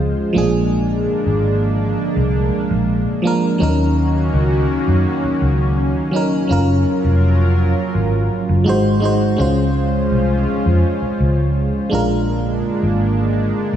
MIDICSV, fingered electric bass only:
0, 0, Header, 1, 3, 480
1, 0, Start_track
1, 0, Tempo, 722892
1, 473, Time_signature, 4, 2, 24, 8
1, 9139, End_track
2, 0, Start_track
2, 0, Title_t, "Fingered electric bass"
2, 0, Program_c, 0, 33
2, 0, Note_on_c, 0, 37, 80
2, 88, Note_off_c, 0, 37, 0
2, 237, Note_on_c, 0, 34, 88
2, 688, Note_off_c, 0, 34, 0
2, 837, Note_on_c, 0, 32, 78
2, 1288, Note_off_c, 0, 32, 0
2, 1436, Note_on_c, 0, 36, 91
2, 1653, Note_off_c, 0, 36, 0
2, 1796, Note_on_c, 0, 34, 81
2, 2013, Note_off_c, 0, 34, 0
2, 2396, Note_on_c, 0, 39, 106
2, 2848, Note_off_c, 0, 39, 0
2, 2876, Note_on_c, 0, 37, 93
2, 3094, Note_off_c, 0, 37, 0
2, 3236, Note_on_c, 0, 42, 83
2, 3344, Note_off_c, 0, 42, 0
2, 3596, Note_on_c, 0, 37, 90
2, 3928, Note_off_c, 0, 37, 0
2, 4317, Note_on_c, 0, 30, 100
2, 4534, Note_off_c, 0, 30, 0
2, 4676, Note_on_c, 0, 29, 89
2, 5128, Note_off_c, 0, 29, 0
2, 5276, Note_on_c, 0, 32, 84
2, 5493, Note_off_c, 0, 32, 0
2, 5636, Note_on_c, 0, 30, 94
2, 5755, Note_off_c, 0, 30, 0
2, 5755, Note_on_c, 0, 32, 101
2, 6208, Note_off_c, 0, 32, 0
2, 6236, Note_on_c, 0, 37, 101
2, 6688, Note_off_c, 0, 37, 0
2, 6716, Note_on_c, 0, 36, 88
2, 6933, Note_off_c, 0, 36, 0
2, 7076, Note_on_c, 0, 41, 79
2, 7184, Note_off_c, 0, 41, 0
2, 7436, Note_on_c, 0, 37, 82
2, 7768, Note_off_c, 0, 37, 0
2, 7916, Note_on_c, 0, 34, 97
2, 8368, Note_off_c, 0, 34, 0
2, 8517, Note_on_c, 0, 32, 82
2, 8968, Note_off_c, 0, 32, 0
2, 9117, Note_on_c, 0, 36, 94
2, 9139, Note_off_c, 0, 36, 0
2, 9139, End_track
3, 0, Start_track
3, 0, Title_t, "Muted fingered electric bass strokes"
3, 3477, Note_on_c, 9, 29, 44
3, 3543, Note_off_c, 9, 29, 0
3, 7316, Note_on_c, 9, 29, 44
3, 7382, Note_off_c, 9, 29, 0
3, 9139, End_track
0, 0, End_of_file